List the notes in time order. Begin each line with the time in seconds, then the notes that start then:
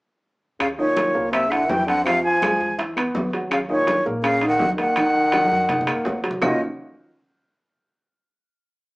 0.60 D#2 C#3 F5, high bongo, high conga, high timbale, claves
0.78 A#2 D#4 C#5 D#5, high conga
0.96 high bongo, high conga, high timbale, low timbale
1.15 C2 A#3 A#4, high bongo, high conga
1.31 C3 E5, high bongo, high conga, high timbale, claves
1.50 D3 E4 E5 F#5, high bongo, high conga, high timbale
1.68 F2 E3 G5, high bongo, low bongo, high conga, low timbale
1.86 D3 C4 C5 F#5, high bongo, high timbale
2.05 C3 F3 F4 F5, high bongo, high conga, high timbale, claves
2.23 F3 G#5, high conga
2.42 G#3 G#4, high bongo, high conga, high timbale, low timbale, claves
2.60 E2, high bongo, high conga
2.78 E4 E5, high bongo, high conga, high timbale
2.96 B3 B4, high bongo, high conga, high timbale, claves
3.15 D#2, high bongo, low bongo, high conga, low timbale
3.33 F#3 F#4, high bongo, high timbale
3.51 C#3 F5, high bongo, high conga, high timbale, claves
3.69 A#2 D#4 C#5 D#5, high conga
3.87 high bongo, high conga, high timbale, low timbale
4.06 A#1 A#3 A#4, high bongo, high conga
4.23 C#3 F5, high bongo, high conga, high timbale, claves
4.41 D#4 D#5, high bongo, high conga, high timbale
4.47 D#3 F#5
4.59 D#2, high bongo, low bongo, high conga, low timbale
4.77 D#3 A#3 A#4 F#5, high bongo, high timbale
4.96 D#3 D#4, high bongo, high conga, high timbale, claves
5.14 high conga
5.32 F#3 F#4, high bongo, high conga, high timbale, low timbale, claves
5.45 high conga
5.51 F#2, high bongo
5.69 D#4 D#5, high bongo, low conga, high timbale
5.81 low conga
5.87 A#3 A#4, high timbale, claves
6.05 D#2, high bongo, low bongo, low timbale
6.24 F#3 F#4, high bongo, high timbale
6.31 low conga
6.41 D#2 A#2 D#3 A#3 C#4 D#4 F4 F#4 D#5, low bongo, low conga, low timbale, claves